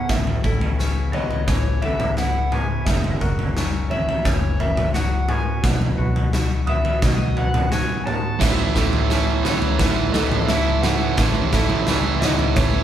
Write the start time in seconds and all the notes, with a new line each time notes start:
Already playing: C#3 E3 B3 C#4 E4 B4
0.09 A1 A2 E5 G#5, kick, snare, floor tom
0.27 floor tom
0.44 A1 E4 A4, kick
0.61 floor tom
0.79 C#4, snare
1.13 B3 C#5 D#5, floor tom
1.31 floor tom
1.47 A1 E3 C#5, kick, snare, floor tom
1.82 B3 A4 E5, floor tom
2.00 floor tom, mid tom
2.17 E4 F#5, snare, floor tom
2.52 C#4 B4 G#5, mid tom
2.85 F#1 F#2 A#2 E3 F#4 E5, kick, snare, floor tom
3.04 floor tom
3.20 F#1 F#4 A#4, kick
3.39 floor tom
3.56 C#4, snare
3.90 C#5 E5, floor tom
4.09 floor tom
4.25 F#1 E3 C#5, kick, snare, floor tom
4.60 A#4 E5, floor tom
4.77 floor tom, mid tom
4.94 F#4 F#5, snare, floor tom
5.29 C#4 B4 G#5, mid tom
5.63 B1 B2 D#3 B3 F#5, kick, snare, floor tom
5.82 floor tom
5.98 B1 F#4 B4
6.16 floor tom
6.33 snare
6.67 B3 E5 D#6, floor tom
6.85 floor tom
7.02 B1 F#3 D#5, kick, snare, floor tom
7.36 B3 B4 F#5, floor tom
7.54 floor tom, mid tom
7.71 F#4 G#5, snare, floor tom
8.06 D#4 C#5 A5, mid tom
8.39 A1 A2 C#3 E3 A3 A4 E5, kick, snare, floor tom, crash
8.59 floor tom
8.74 A1 A2 E3 A3 E4 A4, kick, snare
8.93 floor tom
9.09 A2 E3 A3 C#4, snare
9.43 A2 E3 A3 B3 C#5, snare, floor tom
9.62 floor tom
9.78 A1 A2 E3 A3 B4, kick, snare, floor tom
10.12 A2 E3 A3 B3 A4 D#5, snare, floor tom
10.32 floor tom, mid tom
10.47 A2 E3 A3 E4 E5, snare, floor tom
10.82 A2 E3 A3 C#4 B4 F#5, snare, mid tom
11.17 A1 A2 E3 A3 B4 E5, kick, snare, floor tom
11.35 floor tom
11.52 A1 A2 E3 A3 E4 A4, kick, snare
11.70 floor tom
11.87 A2 E3 A3 C#4, snare
12.21 A2 E3 A3 B3 C#5 D#5, snare, floor tom
12.39 floor tom
12.56 A1 A2 E3 A3 C#5, kick, snare, floor tom